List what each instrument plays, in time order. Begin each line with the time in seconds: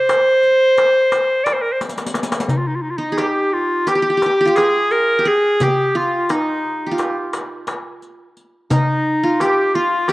Already playing: qanun C5 D5, clarinet C5
0.09 riq, darbuka tek
0.43 riq, darbuka ka
0.78 riq, darbuka tek
1.12 riq, darbuka tek
1.44 clarinet D5, riq, darbuka tek
1.53 clarinet C5
1.62 clarinet A#4
1.72 clarinet C5
1.81 riq, darbuka tek
1.89 riq
1.98 riq, darbuka ka
2.06 riq
2.14 riq, darbuka tek
2.23 riq
2.32 riq, darbuka ka
2.40 riq
2.49 clarinet D#4, riq, darbuka dum
2.57 clarinet F4
2.67 clarinet D#4
2.76 clarinet F4
2.82 clarinet D#4
2.91 clarinet F4
2.97 clarinet D#4, qanun D#4
3.12 qanun G#4
3.18 qanun G4, clarinet G4, riq, darbuka tek
3.53 clarinet F4, darbuka ka
3.87 qanun G4, clarinet G4, riq, darbuka tek
3.95 qanun G4
4.02 qanun G4
4.10 qanun G4
4.17 qanun G4
4.22 qanun G4, riq, darbuka tek
4.41 qanun G4
4.46 qanun F4 G4
4.56 clarinet G#4, qanun G#4, riq, darbuka tek
4.91 clarinet A#4, riq
5.19 qanun G4
5.25 qanun G#4, clarinet G#4, riq
5.60 qanun G4, clarinet G4, riq, darbuka dum
5.95 qanun F4, clarinet F4
6.29 qanun D#4, clarinet D#4, riq, darbuka tek
6.65 darbuka ka
6.86 qanun G4
6.91 qanun F4
6.98 riq, darbuka tek
7.33 riq, darbuka tek
7.67 riq, darbuka tek
8.02 riq
8.37 riq
8.71 qanun D#4, clarinet D#4, riq, darbuka dum
9.24 qanun F4
9.40 qanun G4, clarinet G4, riq, darbuka tek
9.75 clarinet F4, qanun F4, darbuka ka
10.08 qanun G4, clarinet G4, riq, darbuka tek